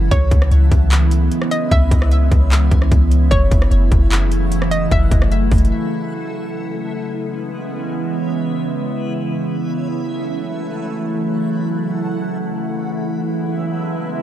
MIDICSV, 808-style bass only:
0, 0, Header, 1, 2, 480
1, 0, Start_track
1, 0, Key_signature, 4, "minor"
1, 0, Tempo, 400000
1, 137, Time_signature, 4, 2, 24, 8
1, 17066, End_track
2, 0, Start_track
2, 0, Title_t, "808-style bass"
2, 0, Program_c, 0, 38
2, 137, Note_on_c, 0, 37, 109
2, 367, Note_off_c, 0, 37, 0
2, 376, Note_on_c, 0, 37, 100
2, 607, Note_off_c, 0, 37, 0
2, 616, Note_on_c, 0, 37, 97
2, 847, Note_off_c, 0, 37, 0
2, 858, Note_on_c, 0, 37, 110
2, 1549, Note_off_c, 0, 37, 0
2, 2057, Note_on_c, 0, 37, 108
2, 2288, Note_off_c, 0, 37, 0
2, 2296, Note_on_c, 0, 37, 104
2, 2757, Note_off_c, 0, 37, 0
2, 2778, Note_on_c, 0, 37, 106
2, 3239, Note_off_c, 0, 37, 0
2, 3257, Note_on_c, 0, 37, 101
2, 3488, Note_off_c, 0, 37, 0
2, 3499, Note_on_c, 0, 37, 112
2, 3959, Note_off_c, 0, 37, 0
2, 3977, Note_on_c, 0, 30, 110
2, 4207, Note_off_c, 0, 30, 0
2, 4217, Note_on_c, 0, 30, 101
2, 4447, Note_off_c, 0, 30, 0
2, 4457, Note_on_c, 0, 30, 105
2, 4688, Note_off_c, 0, 30, 0
2, 4699, Note_on_c, 0, 30, 107
2, 5850, Note_off_c, 0, 30, 0
2, 5897, Note_on_c, 0, 30, 109
2, 6128, Note_off_c, 0, 30, 0
2, 6137, Note_on_c, 0, 30, 103
2, 6598, Note_off_c, 0, 30, 0
2, 6619, Note_on_c, 0, 30, 103
2, 6848, Note_off_c, 0, 30, 0
2, 17066, End_track
0, 0, End_of_file